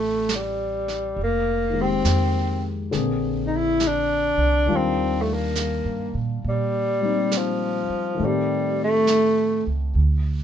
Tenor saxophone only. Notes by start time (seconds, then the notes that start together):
Already playing: A3
0.35 G3
1.23 A#3
1.81 C4
3.47 D#4
3.56 E4
3.87 D4
4.76 C4
5.22 A3
5.34 A#3
6.49 G3
7.38 F3
8.25 G3
8.84 A3